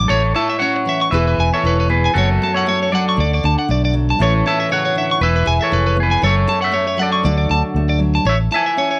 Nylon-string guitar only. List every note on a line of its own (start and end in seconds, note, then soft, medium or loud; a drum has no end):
0.00 0.61 A3 medium
0.09 1.10 A2 medium
0.35 1.10 E4 medium
0.61 1.10 C#4 medium
0.85 1.11 E3 medium
1.12 2.15 E3 medium
1.12 1.88 B3 medium
1.12 1.64 E4 medium
1.12 1.39 G#4 medium
1.65 2.13 E4 medium
1.89 2.12 B3 medium
2.15 3.18 F#2 medium
2.15 2.91 F#3 medium
2.15 2.41 A3 medium
2.42 2.65 A3 medium
2.66 3.67 A3 medium
2.92 3.15 F#3 medium
3.17 4.16 D3 medium
3.43 4.17 D4 medium
3.68 4.20 A3 medium
3.93 4.16 F#3 medium
4.19 5.18 A2 medium
4.19 5.20 E3 medium
4.19 5.19 C#4 medium
4.19 4.45 E4 medium
4.19 5.20 A4 medium
4.46 5.19 E4 medium
4.69 4.95 C#3 medium
4.95 5.21 D3 medium
5.21 6.23 E3 medium
5.46 6.20 G#4 medium
5.72 6.20 E4 medium
5.97 6.20 B3 medium
6.22 7.24 F#2 medium
6.48 muted nylon-string guitar stroke medium
6.72 7.24 A3 medium
6.97 7.21 F#3 medium
7.23 8.23 D3 medium
7.23 7.98 F#3 medium
7.23 7.75 A3 medium
7.23 7.49 D4 medium
7.23 8.27 F#4 medium
7.50 8.23 D4 medium
7.76 8.77 A3 medium
7.99 8.22 F#3 medium
8.25 muted nylon-string guitar stroke medium
8.51 9.00 E4 medium
8.77 9.00 C#4 medium